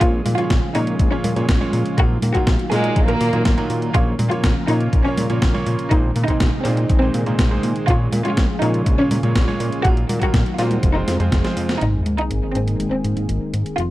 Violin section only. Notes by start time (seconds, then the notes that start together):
0.01 F4
0.38 F4
0.75 D#4
1.12 C#4
1.98 F#4
2.35 F#4
2.71 G#3 G#4
3.08 A#3 A#4
3.94 F4
4.31 F4
4.68 D#4
5.05 C#4
5.91 D#4
6.28 D#4
6.65 C4
7.02 C4
7.88 F4
8.25 F4
8.62 D#4
8.99 C#4
9.85 F#4
10.22 F#4
10.58 F4
10.95 D#4
11.81 D#4
12.18 D#4
12.55 C4
12.92 C4
13.78 F4